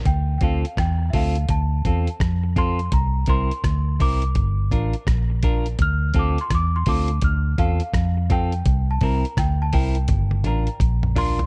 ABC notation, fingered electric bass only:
X:1
M:4/4
L:1/16
Q:"Swing 16ths" 1/4=84
K:Dm
V:1 name="Fingered electric bass" clef=bass
D,,2 D,, z E,,2 D,,2 D,,2 E,, z F,,4 | C,,2 C,, z D,,2 C,,2 G,,,2 A,,, z B,,,4 | D,,2 D,, z E,,2 D,,2 D,,2 E,, z F,,4 | C,,2 C,, z D,,2 C,,2 G,,,2 A,,, z B,,,4 |]